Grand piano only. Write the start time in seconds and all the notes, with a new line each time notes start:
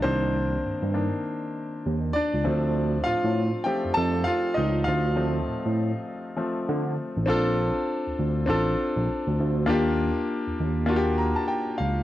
Already playing: D#3 A#3 D4 D#4 F4 D5 D#5 F5
0.02 D#3 A#3 C4 D4 C5
0.94 D#3 A#3 D4
2.13 D4 D5
2.44 F3 A3 C4
3.04 F4 F5
3.64 F3 A3 C4 G4 G5
3.94 A4 A5
4.24 F4 F5
4.54 D#4 D#5
4.84 F4 F5
5.16 F3 A3 C4
6.37 F3 A3 C4
7.26 C4 D4 F4 A4
8.46 C4 D4 F4 A4
9.66 A#3 D4 F4 G4
10.86 A#3 D4 F4 F#4
10.96 G4
11.18 A#5
11.36 A5
11.48 G5
11.78 F5